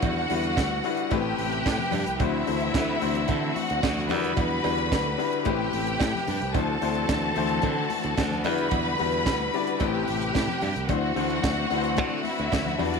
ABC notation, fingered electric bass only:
X:1
M:4/4
L:1/16
Q:1/4=110
K:Dmix
V:1 name="Fingered electric bass" clef=bass
E,,2 E,,2 D,,2 z2 A,,,2 A,,,2 A,, z G,, C,, | D,,2 D,,2 D,,2 D,,2 D,2 z D,, D,,2 E,,2 | E,,2 E,,2 D,,2 z2 A,,,2 A,,,2 A,, z G,, C,, | D,,2 D,,2 D,,2 D,,2 D,2 z D,, D,,2 E,,2 |
E,,2 E,,2 D,,2 z2 A,,,2 A,,,2 A,, z G,, C,, | D,,2 D,,2 D,,2 D,,2 D,2 z D,, D,,2 E,,2 |]